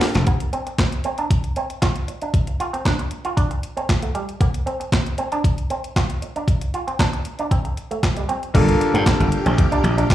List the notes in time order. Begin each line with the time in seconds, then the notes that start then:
Already playing: A#3 D4 F4 G4 A4 F5 A5
0.01 A#3, snare, open hi-hat
0.15 F1, snare, closed hi-hat
0.27 A#3, kick, closed hi-hat
0.40 closed hi-hat
0.53 C4, closed hi-hat
0.67 muted clean electric guitar stroke, closed hi-hat
0.78 muted clean electric guitar stroke, kick, snare, clap, closed hi-hat
0.92 closed hi-hat
1.04 C4, closed hi-hat
1.18 D4, closed hi-hat
1.31 kick, closed hi-hat
1.44 closed hi-hat
1.56 C4, closed hi-hat
1.70 closed hi-hat
1.82 F4, kick, snare, clap, closed hi-hat
1.96 closed hi-hat
2.08 muted clean electric guitar stroke, closed hi-hat
2.22 D4, closed hi-hat
2.34 kick, closed hi-hat
2.47 muted clean electric guitar stroke, closed hi-hat
2.60 F4, closed hi-hat
2.73 C4, closed hi-hat
2.85 D4, kick, snare, clap, closed hi-hat
2.99 muted clean electric guitar stroke, closed hi-hat
3.11 closed hi-hat
3.25 F4, closed hi-hat
3.37 D4, kick, closed hi-hat
3.51 muted clean electric guitar stroke, closed hi-hat
3.63 closed hi-hat
3.77 C4, closed hi-hat
3.89 muted clean electric guitar stroke, kick, snare, clap, closed hi-hat
4.02 A3, closed hi-hat
4.15 G3, closed hi-hat
4.29 closed hi-hat
4.41 A#3, kick, closed hi-hat
4.54 closed hi-hat
4.66 C4, closed hi-hat
4.80 muted clean electric guitar stroke, closed hi-hat
4.92 muted clean electric guitar stroke, kick, snare, clap, closed hi-hat
5.06 closed hi-hat
5.18 C4, closed hi-hat
5.32 D4, closed hi-hat
5.44 kick, closed hi-hat
5.58 closed hi-hat
5.70 C4, closed hi-hat
5.84 closed hi-hat
5.96 F4, kick, snare, clap, closed hi-hat
6.10 closed hi-hat
6.22 muted clean electric guitar stroke, closed hi-hat
6.36 D4, closed hi-hat
6.48 kick, closed hi-hat
6.61 muted clean electric guitar stroke, closed hi-hat
6.74 F4, closed hi-hat
6.87 C4, closed hi-hat
6.99 D4, kick, snare, clap, closed hi-hat
7.13 muted clean electric guitar stroke, closed hi-hat
7.25 closed hi-hat
7.39 D4, closed hi-hat
7.51 C4, kick, closed hi-hat
7.65 muted clean electric guitar stroke, closed hi-hat
7.77 closed hi-hat
7.91 A3, closed hi-hat
8.03 muted clean electric guitar stroke, kick, snare, clap, closed hi-hat
8.17 G3, closed hi-hat
8.29 C4, closed hi-hat
8.43 closed hi-hat
8.54 G1 G3 A#3 D4 F4 G4 A4 D5 F5 G5, kick, closed hi-hat, crash
8.69 closed hi-hat
8.81 muted clean electric guitar stroke, closed hi-hat
8.94 G2 A#3, closed hi-hat
9.06 A#3, kick, snare, clap, closed hi-hat
9.20 G1, muted clean electric guitar stroke, closed hi-hat
9.32 closed hi-hat
9.46 A#1 C4, closed hi-hat
9.58 kick, closed hi-hat
9.72 D4, closed hi-hat
9.84 A#1, muted clean electric guitar stroke, closed hi-hat
9.97 D4, closed hi-hat
10.10 G1, muted clean electric guitar stroke, kick, snare, clap, closed hi-hat